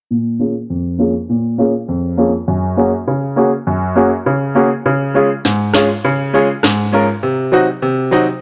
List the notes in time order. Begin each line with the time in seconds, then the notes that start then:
0.11 A#2
0.39 A#3 C#4 F4 G#4
0.70 F2
0.99 A#3 C#4 F4 G#4
1.29 A#2
1.58 A#3 C#4 F4 G#4
1.89 F2
2.17 A#3 C#4 F4 G#4
2.48 F#2
2.77 A#3 C#4 F#4 G#4
3.08 C#3
3.36 A#3 C#4 F#4 G#4
3.67 F#2
3.96 A#3 C#4 F#4 G#4
4.26 C#3
4.55 A#3 C#4 F#4 G#4
4.86 C#3
5.14 G#3 C#4 F4 G#4
5.45 G#2, snare
5.74 G#3 C#4 F4 G#4, cross-stick, snare
6.04 C#3
6.33 G#3 C#4 F4 G#4
6.63 G#2, cross-stick, snare
6.92 G#3 C#4 F4 A#4
7.23 C3
7.52 F#3 C4 D#4 F#4
7.82 C3
8.11 F#3 C4 D#4 F#4